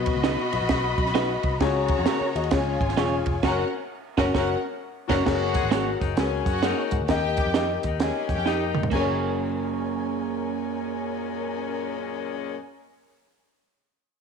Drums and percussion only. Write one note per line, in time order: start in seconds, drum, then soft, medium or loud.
0.06 kick loud
0.06 ride medium
0.24 snare loud
0.24 ride medium
0.53 ride medium
0.69 kick medium
0.69 snare loud
0.69 ride medium
0.98 kick loud
0.98 ride soft
1.06 snare soft
1.06 ride soft
1.15 snare loud
1.15 ride medium
1.43 kick medium
1.43 ride medium
1.60 kick loud
1.60 snare loud
1.60 ride medium
1.88 kick loud
1.88 ride medium
2.06 snare loud
2.06 ride medium
2.36 ride medium
2.44 ride soft
2.51 kick loud
2.51 snare loud
2.51 ride medium
2.81 kick loud
2.81 ride medium
2.89 snare soft
2.89 ride soft
2.97 snare loud
2.97 ride medium
3.26 kick loud
3.26 ride medium
3.43 kick loud
3.43 snare loud
3.43 crash medium
4.18 kick loud
4.18 snare loud
4.35 kick loud
4.35 snare loud
5.10 kick loud
5.10 snare loud
5.10 crash medium
5.26 kick loud
5.26 snare loud
5.26 crash medium
5.54 kick loud
5.54 closed hi-hat medium
5.71 snare loud
5.71 closed hi-hat loud
6.01 kick medium
6.01 closed hi-hat medium
6.17 snare loud
6.17 closed hi-hat medium
6.46 kick loud
6.46 closed hi-hat medium
6.63 snare loud
6.63 closed hi-hat medium
6.91 kick loud
6.91 closed hi-hat medium
7.08 kick loud
7.08 snare loud
7.08 closed hi-hat medium
7.37 kick loud
7.37 closed hi-hat medium
7.54 snare loud
7.54 closed hi-hat medium
7.83 kick medium
7.83 closed hi-hat medium
8.00 snare loud
8.00 closed hi-hat medium
8.29 kick medium
8.29 closed hi-hat medium
8.46 snare medium
8.75 mid tom medium
8.83 floor tom medium
8.91 kick medium
8.91 crash medium